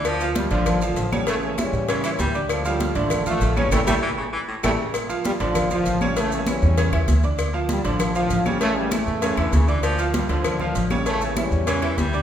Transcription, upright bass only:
X:1
M:4/4
L:1/8
Q:1/4=196
K:Dm
V:1 name="Upright bass" clef=bass
D,,3 A,,,3 A,,,2- | A,,,3 A,,3 D,,2- | D,,3 A,,,3 A,,,2 | A,,, A,,, z4 A,,, z |
z3 A,,,3 A,,,2- | A,,,3 E,,2 E,, D,,2- | D,,3 A,,,3 A,,,2- | A,,,3 E,,2 E,, D,,2- |
D,,3 D,,3 A,,,2- | A,,,3 E,,3 D,,2 |]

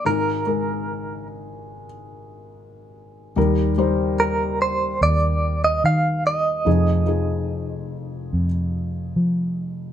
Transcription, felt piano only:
X:1
M:4/4
L:1/8
Q:1/4=73
K:Eb
V:1 name="Felt piano"
[A,EB] [A,EB]3 z4 | [G,EB] [G,Ec]3 z4 | [F,EA] [F,EA]3 z4 |]
V:2 name="Felt piano" clef=bass
[A,,,A,,]8 | [E,,E,]8 | [F,,,F,,]8 |]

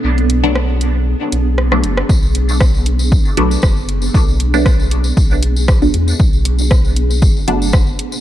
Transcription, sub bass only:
X:1
M:4/4
L:1/8
Q:"Swing 16ths" 1/4=117
K:Bdor
V:1 name="Sub bass" clef=bass
B,,,4 z B,,,2 F,,, | B,,,4 z B,,, F,,,2 | B,,,4 B,,,3 E,, | B,,,4 F,,, F,,,2 z |]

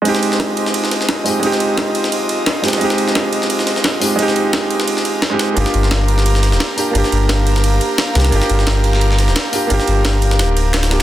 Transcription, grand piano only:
X:1
M:4/4
L:1/16
Q:"Swing 16ths" 1/4=174
K:Fdor
V:1 name="Grand piano"
[A,CEG]12- [A,CEG]2 [A,CEG]2 | [A,CEG]12- [A,CEG]2 [A,CEG]2 | [A,CEG]12- [A,CEG]2 [A,CEG]2 | [A,CEG]12- [A,CEG] [A,CEG]3 |
[B,DFG]12- [B,DFG]2 [B,DFG]2 | [B,DFG]12- [B,DFG]2 [B,DFG]2 | [B,DFG]12- [B,DFG]2 [B,DFG]2 | [B,DFG]12- [B,DFG]2 [B,DFG]2 |]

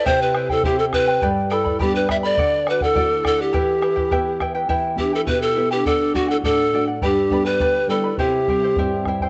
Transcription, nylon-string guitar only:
X:1
M:2/4
L:1/8
Q:1/4=103
K:Em
V:1 name="Nylon-string guitar"
C,2 [CEG]2 | G,,2 [G,B,D]2 | D,2 [A,DF]2 | E,2 [B,EG]2 |
E, [B,EG] B,, [B,EG] | D, [A,DF] A,, [A,DF] | G,, [G,B,D] D, [G,B,D] | C, [G,CE] G,, [G,CE] |]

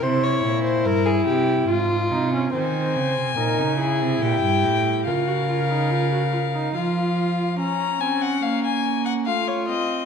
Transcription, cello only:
X:1
M:3/4
L:1/16
Q:1/4=72
K:Fm
V:1 name="Cello" clef=bass
C,2 B,,2 G,,2 C,2 A,,2 C,2 | [K:Bbm] E,2 D, C, B,, D,2 C, B,, =G,, =A,,2 | D,8 F,4 | z12 |]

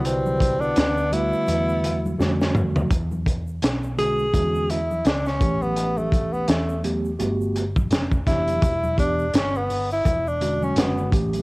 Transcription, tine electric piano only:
X:1
M:4/4
L:1/8
Q:"Swing 16ths" 1/4=84
K:Em
V:1 name="Tine electric piano"
[D,EFB]2 z [D,G,A,F]3 [D,G,A,F]2 | [K:Edor] z3 [D,^G,CF] [D,G,CF] z2 [E,A,C=G]- | [E,A,CG]2 z [F,A,B,G] [A,B,FG] z2 [E,B,DG] | z [E,B,DG] z3 [D,^G,CF]2 [E,A,C=G] |]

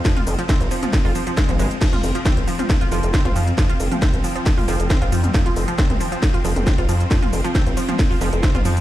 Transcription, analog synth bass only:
X:1
M:4/4
L:1/16
Q:1/4=136
K:Fm
V:1 name="Analog synth bass" clef=bass
z2 F,,, z2 G,,, z3 F,,, z3 A,,, G,,, z | z2 F,,, z2 G,,, z4 F,,, F,,, z A,,, F,, z | z2 F,,, z2 G,,, z4 F,,, F,,, z A,,, F,, z | z2 F,,, z2 G,,, z4 F,,, F,,, z A,,, F,, z |
z2 F,,, z2 G,,, z4 F,,, F,,, z A,,, F,, z |]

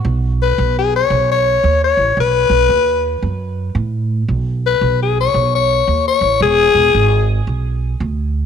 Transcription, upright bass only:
X:1
M:4/4
L:1/8
Q:"Swing" 1/4=113
K:Bmix
V:1 name="Upright bass" clef=bass
B,,,2 B,,,2 B,,,2 D,, A,,, | B,,, B,,, D,,2 F,,2 A,,2 | B,,,2 B,,,2 B,,,2 D,, A,,, | E,,, E,,, G,,,2 B,,,2 =D,,2 |]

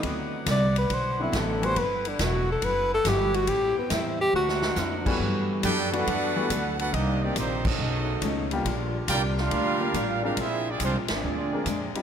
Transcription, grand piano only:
X:1
M:4/4
L:1/8
Q:"Swing" 1/4=139
K:G
V:1 name="Grand piano"
[D,F,B,CE]2 z3 [D,F,B,CE]2 [E,G,A,B,F] | z6 [E,G,A,B,F] z | z6 z [E,G,A,B,F]- | [E,G,A,B,F]2 z [E,G,A,B,F] z [E,G,A,B,F] z2 |
z [_E,_B,CDG] z4 z [G,B,D=FG] | z4 z [G,_B,D=F_B] z [_A,CDFB] | z4 z [_A,CD=F_B] z [G,C_EFG] |]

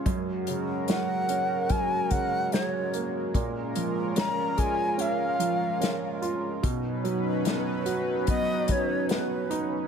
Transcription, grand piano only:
X:1
M:4/4
L:1/8
Q:1/4=73
K:F#
V:1 name="Grand piano" clef=bass
F,, C, F, C F, C, F, A, | A,, E, C G C E, C E | B,, F, B, F B, F, B, D |]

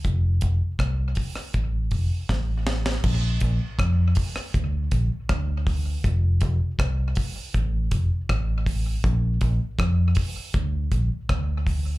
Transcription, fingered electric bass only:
X:1
M:4/4
L:1/16
Q:1/4=80
K:Bb
V:1 name="Fingered electric bass" clef=bass
F,,,2 F,,, z C,,2 z2 A,,,2 F,,, z A,,,4 | B,,,2 B,,, z F,,2 z2 D,,2 B,,, z D,,4 | F,,,2 F,,, z C,,2 z2 A,,,2 F,,, z A,,,4 | B,,,2 B,,, z F,,2 z2 D,,2 B,,, z D,,4 |]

